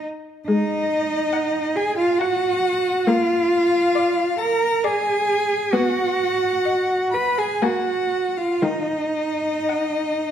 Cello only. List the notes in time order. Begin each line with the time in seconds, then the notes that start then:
0.48 D#4
1.76 G#4
1.98 F4
2.19 F#4
3.07 F4
4.39 A#4
4.84 G#4
5.73 F#4
7.14 B4
7.38 G#4
7.63 F#4
8.38 F4
8.63 D#4